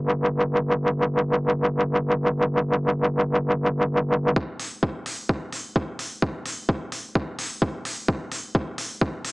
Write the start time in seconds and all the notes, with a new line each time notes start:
Already playing: G1
4.36 kick
4.60 open hi-hat
4.83 kick
5.06 open hi-hat
5.29 kick
5.53 open hi-hat
5.76 kick
5.99 open hi-hat
6.22 kick
6.46 open hi-hat
6.69 kick
6.92 open hi-hat
7.15 kick
7.39 open hi-hat
7.62 kick
7.85 open hi-hat
8.08 kick
8.32 open hi-hat
8.55 kick
8.78 open hi-hat
9.01 kick
9.25 open hi-hat